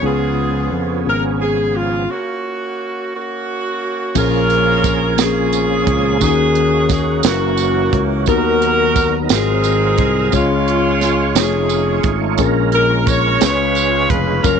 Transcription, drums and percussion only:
4.15 kick, crash, tambourine
4.50 closed hi-hat
4.84 kick, closed hi-hat, tambourine
5.18 snare, closed hi-hat, tambourine
5.53 closed hi-hat, tambourine
5.87 kick, closed hi-hat
6.21 kick, closed hi-hat, tambourine
6.55 closed hi-hat
6.89 kick, snare, closed hi-hat, tambourine
7.23 snare, closed hi-hat, tambourine
7.57 closed hi-hat, tambourine
7.93 kick, closed hi-hat
8.26 kick, closed hi-hat, tambourine
8.62 closed hi-hat
8.96 kick, closed hi-hat, tambourine
9.29 snare, closed hi-hat, tambourine
9.64 closed hi-hat, tambourine
9.98 kick, closed hi-hat
10.32 kick, closed hi-hat, tambourine
10.68 closed hi-hat
11.01 snare, closed hi-hat, tambourine
11.35 snare, closed hi-hat, tambourine
11.69 closed hi-hat, tambourine
12.03 kick, closed hi-hat
12.38 kick, closed hi-hat, tambourine
12.72 closed hi-hat
13.07 kick, closed hi-hat, tambourine
13.41 snare, closed hi-hat, tambourine
13.75 closed hi-hat, tambourine
14.10 kick, closed hi-hat
14.44 kick, closed hi-hat, tambourine

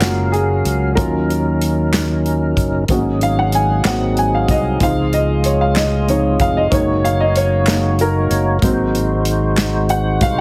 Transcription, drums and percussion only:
0.01 snare, clap, closed hi-hat
0.34 closed hi-hat
0.65 closed hi-hat
0.97 kick, closed hi-hat
1.30 closed hi-hat
1.62 closed hi-hat
1.94 snare, clap, closed hi-hat
2.26 closed hi-hat
2.57 kick, closed hi-hat
2.88 kick, closed hi-hat
3.21 closed hi-hat
3.52 closed hi-hat
3.85 snare, clap, closed hi-hat
4.17 closed hi-hat
4.48 kick, closed hi-hat
4.80 kick, closed hi-hat
5.13 closed hi-hat
5.44 closed hi-hat
5.76 snare, clap, closed hi-hat
6.08 closed hi-hat
6.40 kick, closed hi-hat
6.72 kick, closed hi-hat
7.05 closed hi-hat
7.36 closed hi-hat
7.67 snare, clap, closed hi-hat
7.99 closed hi-hat
8.31 closed hi-hat
8.62 kick, closed hi-hat
8.95 closed hi-hat
9.25 closed hi-hat
9.57 snare, clap, closed hi-hat
9.89 closed hi-hat
10.21 kick, closed hi-hat

